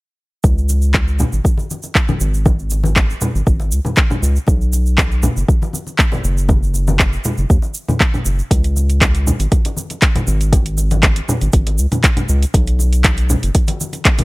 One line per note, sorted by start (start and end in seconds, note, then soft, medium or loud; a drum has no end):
0.44 1.25 C#2 loud
0.44 kick loud
0.44 muted conga soft
0.44 shaker soft
0.58 shaker soft
0.69 muted conga soft
0.69 shaker medium
0.82 shaker soft
0.94 kick loud
0.94 clap loud
0.94 muted conga medium
0.94 shaker soft
1.08 shaker soft
1.19 muted conga soft
1.19 low conga loud
1.19 shaker medium
1.33 1.40 G#1 medium
1.33 shaker soft
1.44 kick loud
1.44 high conga medium
1.44 shaker medium
1.57 muted conga soft
1.57 high conga medium
1.57 shaker soft
1.70 high conga medium
1.70 shaker medium
1.83 muted conga soft
1.83 shaker soft
1.95 kick loud
1.95 clap loud
1.95 shaker soft
2.08 muted conga medium
2.08 high conga medium
2.08 low conga medium
2.08 shaker soft
2.20 3.14 G#1 medium
2.20 shaker medium
2.34 shaker soft
2.46 kick loud
2.46 muted conga soft
2.46 high conga loud
2.46 shaker medium
2.59 shaker soft
2.70 muted conga soft
2.70 shaker medium
2.83 high conga loud
2.83 shaker soft
2.96 kick loud
2.96 clap loud
2.96 muted conga medium
2.96 shaker soft
3.10 shaker soft
3.21 muted conga soft
3.21 low conga loud
3.21 shaker medium
3.35 3.42 G#1 medium
3.35 shaker soft
3.47 3.73 G#1 medium
3.47 kick loud
3.47 shaker medium
3.60 muted conga medium
3.60 shaker soft
3.72 3.80 C#2 medium
3.72 shaker medium
3.85 muted conga soft
3.85 high conga medium
3.85 low conga medium
3.85 shaker soft
3.96 kick loud
3.96 clap loud
3.96 shaker medium
4.10 muted conga soft
4.10 low conga loud
4.10 shaker soft
4.22 4.38 C#2 medium
4.22 shaker medium
4.36 shaker soft
4.47 5.28 B1 loud
4.47 kick loud
4.47 muted conga soft
4.47 shaker medium
4.61 shaker soft
4.73 muted conga soft
4.73 shaker medium
4.86 shaker soft
4.98 kick loud
4.98 clap loud
4.98 muted conga soft
4.98 shaker medium
5.12 shaker soft
5.23 muted conga soft
5.23 low conga loud
5.23 shaker medium
5.36 5.44 F#1 medium
5.36 shaker soft
5.48 kick loud
5.48 high conga medium
5.48 shaker medium
5.62 muted conga medium
5.62 high conga medium
5.62 shaker soft
5.73 high conga medium
5.73 shaker medium
5.87 muted conga soft
5.87 shaker soft
5.99 kick loud
5.99 clap loud
5.99 shaker soft
6.12 muted conga soft
6.12 high conga loud
6.12 low conga medium
6.12 shaker soft
6.24 7.17 F#1 loud
6.24 shaker medium
6.38 shaker soft
6.49 kick loud
6.49 muted conga soft
6.49 high conga loud
6.49 shaker soft
6.63 shaker soft
6.74 muted conga soft
6.74 shaker medium
6.87 high conga loud
6.87 shaker soft
6.99 kick loud
6.99 clap loud
6.99 muted conga soft
6.99 shaker medium
7.13 shaker soft
7.24 muted conga soft
7.24 low conga medium
7.24 shaker medium
7.38 7.45 F#1 medium
7.38 shaker soft
7.50 7.58 D#2 medium
7.50 kick loud
7.50 shaker soft
7.62 muted conga soft
7.62 shaker soft
7.74 shaker medium
7.88 muted conga soft
7.88 high conga medium
7.88 low conga medium
7.88 shaker soft
8.00 kick loud
8.00 clap loud
8.00 shaker soft
8.14 muted conga soft
8.14 low conga medium
8.14 shaker soft
8.25 8.41 F#1 medium
8.25 shaker medium
8.39 shaker soft
8.51 9.32 C#2 loud
8.51 kick loud
8.51 closed hi-hat medium
8.51 muted conga soft
8.51 shaker soft
8.64 closed hi-hat soft
8.64 shaker soft
8.76 muted conga soft
8.76 shaker medium
8.90 closed hi-hat soft
8.90 shaker soft
9.01 kick loud
9.01 clap loud
9.01 closed hi-hat medium
9.01 muted conga medium
9.01 shaker medium
9.15 closed hi-hat soft
9.15 shaker soft
9.27 muted conga soft
9.27 low conga medium
9.27 shaker medium
9.39 9.47 G#1 medium
9.39 closed hi-hat soft
9.39 shaker soft
9.52 kick loud
9.52 closed hi-hat medium
9.52 high conga medium
9.52 shaker medium
9.65 closed hi-hat soft
9.65 muted conga medium
9.65 high conga medium
9.65 shaker soft
9.76 high conga medium
9.76 shaker medium
9.90 closed hi-hat soft
9.90 muted conga soft
9.90 shaker soft
10.02 kick loud
10.02 clap loud
10.02 closed hi-hat medium
10.02 shaker soft
10.15 closed hi-hat soft
10.15 muted conga medium
10.15 high conga medium
10.15 low conga medium
10.15 shaker soft
10.27 11.21 G#1 medium
10.27 shaker medium
10.41 closed hi-hat soft
10.41 shaker soft
10.53 kick loud
10.53 closed hi-hat medium
10.53 muted conga soft
10.53 high conga loud
10.53 shaker soft
10.66 closed hi-hat soft
10.66 shaker soft
10.77 muted conga soft
10.77 shaker medium
10.91 closed hi-hat soft
10.91 high conga medium
10.91 shaker soft
11.03 kick loud
11.03 clap loud
11.03 closed hi-hat medium
11.03 muted conga medium
11.03 shaker soft
11.16 closed hi-hat soft
11.16 shaker soft
11.28 muted conga soft
11.28 low conga loud
11.28 shaker medium
11.41 11.49 G#1 medium
11.41 closed hi-hat soft
11.41 shaker soft
11.53 11.80 G#1 medium
11.53 kick loud
11.53 closed hi-hat medium
11.53 shaker soft
11.67 closed hi-hat soft
11.67 muted conga soft
11.67 shaker soft
11.78 11.87 C#2 medium
11.78 shaker medium
11.92 closed hi-hat soft
11.92 muted conga soft
11.92 high conga medium
11.92 low conga medium
11.92 shaker soft
12.04 kick loud
12.04 clap loud
12.04 closed hi-hat medium
12.04 shaker medium
12.17 closed hi-hat soft
12.17 muted conga medium
12.17 low conga medium
12.17 shaker soft
12.29 12.45 C#2 medium
12.29 shaker medium
12.42 closed hi-hat soft
12.42 shaker soft
12.54 13.35 B1 loud
12.54 kick loud
12.54 closed hi-hat medium
12.54 muted conga soft
12.54 shaker soft
12.67 closed hi-hat soft
12.67 shaker soft
12.79 muted conga soft
12.79 shaker medium
12.93 closed hi-hat soft
12.93 shaker soft
13.04 kick loud
13.04 clap loud
13.04 closed hi-hat medium
13.04 muted conga medium
13.04 shaker soft
13.17 closed hi-hat soft
13.17 shaker soft
13.30 muted conga soft
13.30 low conga loud
13.30 shaker medium
13.43 13.50 F#1 medium
13.43 closed hi-hat soft
13.43 shaker soft
13.55 kick loud
13.55 closed hi-hat medium
13.55 high conga medium
13.55 shaker soft
13.67 closed hi-hat soft
13.67 muted conga medium
13.67 high conga medium
13.67 shaker soft
13.81 high conga medium
13.81 shaker medium
13.93 closed hi-hat soft
13.93 muted conga soft
13.93 shaker soft
14.05 kick loud
14.05 clap loud
14.05 closed hi-hat medium
14.05 shaker soft
14.18 closed hi-hat soft
14.18 muted conga medium
14.18 high conga medium
14.18 low conga loud
14.18 shaker soft